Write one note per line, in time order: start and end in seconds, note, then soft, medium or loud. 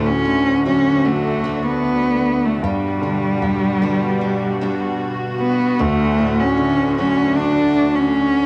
0.00 2.59 D2 medium
0.00 1.41 A2 soft
0.00 2.59 D3 medium
0.00 2.97 D3 medium
0.00 2.59 A3 medium
0.00 1.05 D4 soft
0.00 2.59 F#4 medium
0.07 0.66 C#4 medium
0.25 1.80 D3 soft
0.25 0.64 A3 soft
0.66 2.20 F#3 soft
0.66 1.43 A3 soft
0.66 1.06 C#4 medium
0.66 1.45 F#4 medium
1.05 1.64 A3 medium
1.05 1.44 D4 soft
1.44 2.71 A3 medium
1.44 3.02 D4 medium
1.44 3.83 F#4 medium
1.65 2.47 B3 medium
2.45 2.65 A3 medium
2.63 3.41 G2 medium
2.63 5.76 B2 medium
2.63 5.79 G3 medium
2.63 5.00 G3 medium
2.63 5.76 G3 medium
2.63 8.46 F#4 medium
3.02 3.80 D3 soft
3.02 3.82 D4 medium
3.42 4.96 G2 soft
3.42 3.81 B3 soft
3.81 5.35 D3 soft
3.81 4.60 B3 medium
3.81 4.21 D4 medium
3.81 4.62 F#4 medium
4.21 4.61 D4 soft
4.61 5.87 B3 medium
4.61 6.18 D4 medium
4.61 6.99 F#4 medium
5.40 5.82 B3 medium
5.79 8.46 D2 medium
5.79 8.46 D3 medium
5.79 8.46 A3 medium
5.79 6.41 A3 medium
6.18 7.73 A2 soft
6.18 7.37 D4 medium
6.39 6.97 C#4 medium
6.57 8.12 D3 soft
6.57 6.97 A3 soft
6.98 8.46 F#3 soft
6.98 7.75 A3 soft
6.98 7.38 C#4 medium
6.98 7.78 F#4 medium
7.36 7.97 D4 medium
7.36 8.46 D4 medium
7.76 8.46 A3 medium
7.76 8.46 F#4 medium
7.96 8.46 C#4 medium